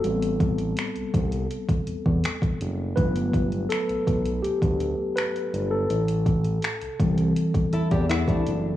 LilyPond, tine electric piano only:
<<
  \new Staff \with { instrumentName = "Tine electric piano" } { \time 4/4 \key g \major \tempo 4 = 82 a'4~ a'16 r2 r8. | b'4 a'4 g'4 b'8. a'16~ | a'4~ a'16 r2 r8. | }
  \new Staff \with { instrumentName = "Tine electric piano" } { \time 4/4 \key g \major <g b c'>4. r2 r8 | <fis a b>8 r2. r8 | r4. <e g c'>8 r2 | }
>>